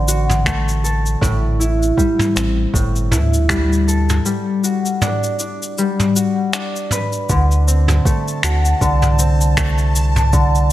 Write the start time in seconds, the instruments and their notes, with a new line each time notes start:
Already playing: sub bass A1, harp D3 A3 C4 A4
0.08 harp F#4, cabasa
0.29 mid tom, cabasa
0.46 harp A3, finger snap, kick, cabasa
0.68 cabasa
0.84 harp A4, cabasa
1.06 cabasa
1.21 sub bass A1, harp A2, kick, mid tom, cabasa
1.60 harp E4, cabasa
1.83 cabasa
1.97 harp G3, kick, cabasa
2.19 mid tom, cabasa
2.36 sub bass A1, harp C4, finger snap, cabasa
2.73 sub bass G1, harp A2, kick, cabasa
2.96 cabasa
3.11 sub bass D2, harp E4, mid tom, cabasa
3.34 cabasa
3.49 harp G3, finger snap, kick, cabasa
3.73 cabasa
3.88 harp A4, cabasa
4.09 mid tom, cabasa
4.25 harp G3, cabasa
4.64 harp F#4, cabasa
4.86 cabasa
5.01 harp D4, mid tom, cabasa
5.24 cabasa
5.39 harp D4, cabasa
5.63 cabasa
5.78 harp G3, cabasa
6.00 mid tom, cabasa
6.16 harp F#4, cabasa
6.53 harp D4, finger snap, cabasa
6.76 cabasa
6.91 harp B4, mid tom, cabasa
7.13 cabasa
7.29 sub bass D2, harp D3, synth texture A5, kick, cabasa
7.51 cabasa
7.67 harp C4, cabasa
7.88 mid tom, cabasa
8.05 harp A3, kick, cabasa
8.28 cabasa
8.43 sub bass D2, harp F#4, finger snap, cabasa
8.65 cabasa
8.81 sub bass C2, harp D3, kick, cabasa
9.02 mid tom, cabasa
9.19 harp C4, cabasa
9.41 cabasa
9.57 harp A3, finger snap, kick, cabasa
9.78 cabasa
9.96 cabasa
10.16 mid tom, cabasa
10.33 harp D3, kick, cabasa
10.55 cabasa